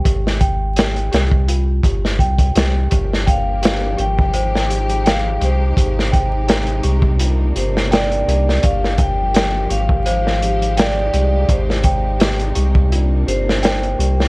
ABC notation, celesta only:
X:1
M:4/4
L:1/8
Q:"Swing 16ths" 1/4=84
K:Ablyd
V:1 name="Celesta"
G g G G F G g G | G g G G c G g G | G g G G F G g G | G g G G c G g G |
G g G G F G g G |]